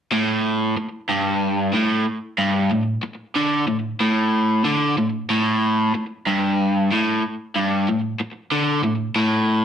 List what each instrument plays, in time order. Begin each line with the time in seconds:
0.12 overdriven electric guitar A2
0.78 muted overdriven electric guitar stroke
1.09 overdriven electric guitar G2
1.73 overdriven electric guitar A2
2.38 overdriven electric guitar G2
2.71 overdriven electric guitar A2
3.03 muted overdriven electric guitar stroke
3.36 overdriven electric guitar D3
3.68 overdriven electric guitar A2
4.00 overdriven electric guitar A2
4.65 overdriven electric guitar D3
4.98 overdriven electric guitar A2
5.30 overdriven electric guitar A2
5.95 muted overdriven electric guitar stroke
6.27 overdriven electric guitar G2
6.92 overdriven electric guitar A2
7.56 overdriven electric guitar G2
7.88 overdriven electric guitar A2
8.20 muted overdriven electric guitar stroke
8.52 overdriven electric guitar D3
8.84 overdriven electric guitar A2
9.16 overdriven electric guitar A2